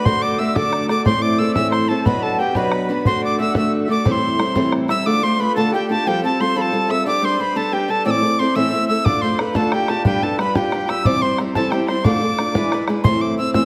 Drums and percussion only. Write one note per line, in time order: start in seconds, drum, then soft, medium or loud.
0.06 bodhran medium
0.56 bodhran medium
0.73 bodhran medium
0.89 bodhran medium
1.06 bodhran medium
1.56 bodhran medium
1.72 bodhran medium
2.06 bodhran medium
2.55 bodhran medium
2.72 bodhran medium
3.05 bodhran medium
3.55 bodhran medium
4.06 bodhran medium
4.40 bodhran medium
4.56 bodhran medium
4.72 bodhran medium
4.89 bodhran medium
9.06 bodhran medium
9.22 bodhran soft
9.39 bodhran medium
9.55 bodhran medium
9.72 bodhran medium
9.88 bodhran medium
10.05 bodhran medium
10.22 bodhran soft
10.39 bodhran medium
10.55 bodhran medium
10.72 bodhran medium
10.89 bodhran medium
11.05 bodhran medium
11.22 bodhran soft
11.38 bodhran medium
11.55 bodhran medium
11.72 bodhran medium
11.88 bodhran medium
12.05 bodhran medium
12.39 bodhran medium
12.55 bodhran medium
12.72 bodhran medium
12.88 bodhran medium
13.04 bodhran loud
13.54 bodhran medium